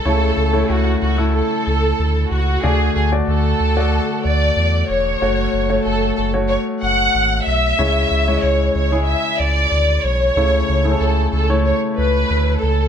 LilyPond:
<<
  \new Staff \with { instrumentName = "Violin section" } { \time 4/4 \key a \major \tempo 4 = 93 a'4 fis'8 fis'8 a'4. fis'8 | gis'8 gis'8 a'4. d''4 cis''8~ | cis''4 a'8 a'8 cis''8 fis''4 e''8~ | e''4 cis''8 cis''8 e''8 d''4 cis''8~ |
cis''4 a'8 a'8 cis''8 b'4 a'8 | }
  \new Staff \with { instrumentName = "Grand piano" } { \time 4/4 \key a \major <a e' cis''>8. <a e' cis''>4 <a e' a'>4.~ <a e' a'>16 r8 | <a fis' d''>8. <a fis' d''>4 <a fis' d''>4.~ <a fis' d''>16 r8 | <a fis' cis''>8. <a fis' cis''>4 <a fis' cis''>4.~ <a fis' cis''>16 r8 | <gis e' cis''>8. <gis e' cis''>4 <gis e' gis'>4.~ <gis e' gis'>16 r8 |
<a e' cis''>8. <a e' gis' a'>4 <a e' cis''>4.~ <a e' cis''>16 r8 | }
  \new Staff \with { instrumentName = "Grand piano" } { \clef bass \time 4/4 \key a \major cis4. r2 r8 | d4. r2 r8 | r1 | cis4. r2 r8 |
cis4. r2 r8 | }
  \new Staff \with { instrumentName = "Sub bass" } { \clef bass \time 4/4 \key a \major cis,8 cis,8 cis,8 cis,8. r16 cis,8 d,8 cis,8 | d,8 d,8 d,8 d,8. r16 d,8 e,8 e,,8 | fis,,8 fis,,8 fis,,8 fis,,8. r16 fis,,8 gis,,8 b,,8 | cis,8 cis,8 cis,8 cis,8. r16 cis,8 d,8 b,,8 |
cis,8 cis,8 cis,8 cis,8. r16 cis,8 d,8 cis,8 | }
>>